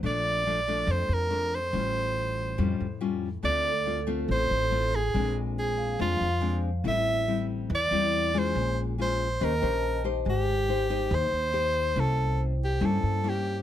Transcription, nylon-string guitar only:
\new Staff \with { instrumentName = "Nylon-string guitar" } { \time 4/4 \key bes \lydian \tempo 4 = 141 << { <f a d'>4 <f a d'>8 <f a d'>4. <f a d'>8 r8 | <g cis' eis'>2 <g cis' eis'>8 r8 <g cis' eis'>8 r8 | <a c' f'>8 r8 <a c' f'>8 <a c' f'>4. <a c' f'>8 r8 | <aes c' d'>2 <aes c' d'>8 r8 <aes c' d'>8 r8 |
<g c' e'>4 <g c' e'>4 r8 <g c' e'>4 <aes des' f'>8~ | <aes des' f'>4 <aes des' f'>8 r8 <des' g' c''>8 <des' g' c''>4 <ees' g' c''>8~ | <ees' g' c''>4 <ees' g' c''>8 <ees' g' c''>4. <ees' g' c''>4 | <bes des' e'>4. r8 <bes des' e'>4 <bes des' e'>4 | } \\ { bes,2 f,2 | a,2 a,2 | d2 a,2 | bes,2 f2 |
a,2 e2 | bes,2 ees2 | aes2 ees2 | c2 g2 | } >> }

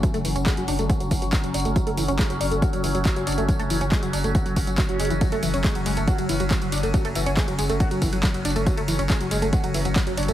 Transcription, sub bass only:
\new Staff \with { instrumentName = "Sub bass" } { \clef bass \time 4/4 \key fis \minor \tempo 4 = 139 r16 fis,,16 fis,,16 fis,,16 r16 fis,,16 fis,,16 fis,,16 r16 fis,,16 fis,,16 fis,,16 r16 fis,,16 fis,,16 fis,,16 | r16 fis,,16 fis,,16 fis,,16 r16 fis,,16 fis,,16 fis,,16 r16 fis,,16 fis,,16 fis,,16 r16 fis,,16 fis,,16 fis,,16 | r16 fis,,16 fis,,16 fis,,16 r16 fis,,16 fis,,16 fis,,16 r16 fis,,16 fis,,16 fis,,16 r16 fis,,16 fis,,16 fis,,16 | r16 fis,,16 fis,,16 fis,,16 r16 fis,,16 fis,,16 fis,,16 r16 fis,,16 fis,,16 fis,,16 r16 fis,,16 fis,,16 fis,,16 |
r16 fis,,16 fis,,16 fis,,16 r16 fis,,16 fis,,16 fis,,16 r16 fis,,16 fis,,16 fis,,16 r16 fis,,16 fis,,16 fis,,16 | r16 fis,,16 fis,,16 fis,,16 r16 fis,,16 fis,,16 fis,,16 r16 fis,,16 fis,,16 fis,,16 r16 fis,,16 fis,,16 fis,,16 | }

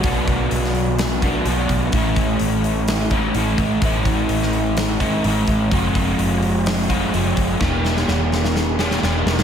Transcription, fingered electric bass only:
\new Staff \with { instrumentName = "Fingered electric bass" } { \clef bass \time 4/4 \key a \major \tempo 4 = 127 b,,4 b,,2 b,,8 b,,8 | a,,4 a,,2 a,,8 a,,8 | a,,4 a,,2 a,,8 a,,8 | fis,,4 fis,,2 fis,,8 fis,,8 |
e,,4 e,,2 e,,8 e,,8 | }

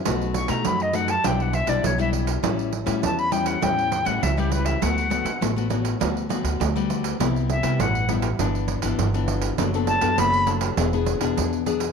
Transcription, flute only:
\new Staff \with { instrumentName = "Flute" } { \time 4/4 \key g \lydian \tempo 4 = 101 r8 cis'''16 bes''16 b''16 dis''16 fis''16 a''16 g''16 fis''16 e''16 d''16 cis''16 e''16 r8 | r4 a''16 b''16 g''16 fis''16 g''8. fis''16 e''16 g'16 b'16 e''16 | fis''4 r2. | r8 e''8 fis''8 r2 r8 |
r8 a''8 b''8 r2 r8 | }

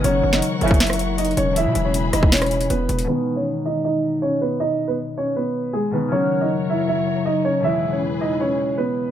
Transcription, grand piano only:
\new Staff \with { instrumentName = "Grand piano" } { \time 4/4 \key gis \minor \tempo 4 = 158 <cis' cis''>8. <dis' dis''>16 r8 <e' e''>8 <e' e''>4 <dis' dis''>8 <cis' cis''>8 | <e' e''>8. <cis' cis''>16 r8 <dis' dis''>8 <cis' cis''>4 <b b'>4 | <b b'>8. <cis' cis''>16 r8 <dis' dis''>8 <dis' dis''>4 <cis' cis''>8 <b b'>8 | <dis' dis''>8. <b b'>16 r8 <cis' cis''>8 <b b'>4 <gis gis'>8 <b b'>8 |
<cis' cis''>8. <dis' dis''>16 r8 <e' e''>8 <e' e''>4 <dis' dis''>8 <cis' cis''>8 | <e' e''>8. <cis' cis''>16 r8 <dis' dis''>8 <cis' cis''>4 <b b'>4 | }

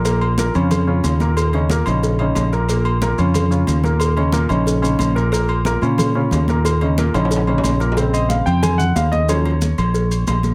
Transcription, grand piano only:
<<
  \new Staff \with { instrumentName = "Grand piano" } { \time 4/4 \key bes \minor \tempo 4 = 182 <bes, bes bes'>4 <bes, bes bes'>8 <des des' f'>4 <des des' f'>4 <bes, bes bes'>8~ | <bes, bes bes'>8 <des des' ees'>8 <bes, bes bes'>8 <des des' ees'>4 <des des' ees'>4 <bes, bes bes'>8 | <bes, bes bes'>4 <bes, bes bes'>8 <des des' f'>4 <des des' f'>4 <bes, bes bes'>8~ | <bes, bes bes'>8 <des des' ees'>8 <bes, bes bes'>8 <des des' ees'>4 <des des' ees'>4 <bes, bes bes'>8 |
<bes, bes bes'>4 <bes, bes bes'>8 <des des' f'>4 <des des' f'>4 <bes, bes bes'>8~ | <bes, bes bes'>8 <des des' ees'>8 <bes, bes bes'>8 <des des' ees'>4 <des des' ees'>4 <bes, bes bes'>8 | r8 ees''8 f''8 g''8 aes''8 ges''8 f''8 ees''8 | des''2. r4 | }
  \new Staff \with { instrumentName = "Grand piano" } { \clef bass \time 4/4 \key bes \minor r1 | r1 | r1 | r1 |
r1 | r1 | <des aes c'>1 | <f ges des'>8 r2. r8 | }
>>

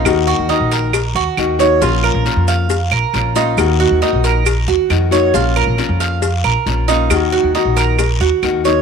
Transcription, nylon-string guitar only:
\new Staff \with { instrumentName = "Nylon-string guitar" } { \time 4/4 \key ees \dorian \tempo 4 = 136 <ees bes ees' ges'>4 <ees bes ees' ges'>4 r4 <ees bes ees' ges'>8 <bes ees' ges'>8 | <f bes des' f'>4 <f bes des' f'>4 r4 <f bes des' f'>8 <bes des' f'>8 | <ees bes ees' ges'>4 <ees bes ees' ges'>4 r4 <ees bes ees' ges'>8 <bes ees' ges'>8 | <f bes des' f'>4 <f bes des' f'>4 r4 <f bes des' f'>8 <bes des' f'>8 |
<ees bes ees' ges'>4 <ees bes ees' ges'>4 r4 <ees bes ees' ges'>8 <bes ees' ges'>8 | }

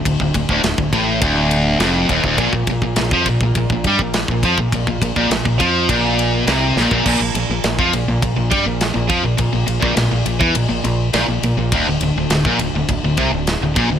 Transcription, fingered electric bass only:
\new Staff \with { instrumentName = "Fingered electric bass" } { \clef bass \time 4/4 \key bes \lydian \tempo 4 = 103 d,,16 d,,16 d,,16 d,,16 d,,16 d,,16 a,,8 d,,4 f,,8 ees,,16 d,,16 | bes,,16 bes,,16 bes,,16 bes,,16 bes,,16 f,16 bes,,16 bes,,16 bes,,16 bes,,16 g,16 bes,,8 bes,,16 f,16 bes,,16 | bes,,16 bes,,16 bes,,16 bes,,16 bes,,16 bes,,16 f,8 bes,,4 c,8 bes,,16 bes,,16 | bes,,16 bes,,16 bes,,16 bes,,16 bes,,16 f,16 bes,,16 bes,,16 bes,,16 bes,,16 g,16 bes,,8 bes,,16 f,16 bes,,16 |
bes,,16 bes,,16 bes,,16 bes,,16 bes,,16 bes,,16 bes,,16 e,16 bes,,16 bes,,16 bes,,8 bes,,16 bes,,16 bes,,16 bes,,16 | d,,16 d,,16 d,,16 d,,16 d,,16 bes,,16 d,,16 d,,16 d,,16 d,,16 c,16 d,,8 d,,16 bes,,16 d,,16 | }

